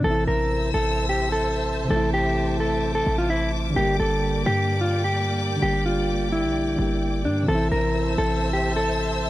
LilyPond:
<<
  \new Staff \with { instrumentName = "String section" } { \time 4/4 \key a \phrygian \tempo 4 = 129 << { e'''1 | d'''1~ | d'''1~ | d'''1 |
e'''1 | } \\ { <c'' e'' a''>1~ | <c'' e'' a''>1 | <bes d'' g''>1~ | <bes d'' g''>1 |
<c'' e'' a''>1 | } >> }
  \new Staff \with { instrumentName = "Clean electric guitar" } { \time 4/4 \key a \phrygian a'8 bes'4 a'8. g'8 a'4~ a'16 | a'8 g'4 a'8. a'8 f'16 e'8 r8 | g'8 a'4 g'8. f'8 g'4~ g'16 | g'8 f'4 e'2 d'8 |
a'8 bes'4 a'8. g'8 a'4~ a'16 | }
  \new Staff \with { instrumentName = "Synth keys" } { \clef bass \time 4/4 \key a \phrygian <c e c' e'>1 | <c e a e'>1 | <d g bes g'>1 | <d g bes g'>2~ <d g bes g'>8 <d g bes g'>4. |
<c e c' e'>1 | }
  \new Staff \with { instrumentName = "808-style bass" } { \clef bass \time 4/4 \key a \phrygian a,,8 a,,4 a,,2~ a,,8 | a,,2~ a,,8 a,,4. | g,,8 g,,4 g,2~ g,8 | g,,4.~ g,,16 bes,,8. g,,4 g,8 |
a,,8 a,,4 a,,2~ a,,8 | }
>>